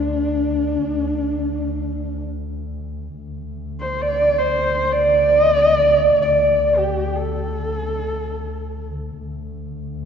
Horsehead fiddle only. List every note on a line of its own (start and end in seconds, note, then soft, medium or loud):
0.00 2.22 D4 medium
3.80 4.03 C5 medium
4.01 4.39 D5 medium
4.38 4.94 C5 medium
4.92 5.38 D5 loud
5.38 5.50 D#5 loud
5.50 5.64 D5 loud
5.64 5.76 D#5 loud
5.76 6.21 D5 loud
6.22 6.79 D5 medium
6.77 7.17 G4 medium
7.16 8.91 A4 medium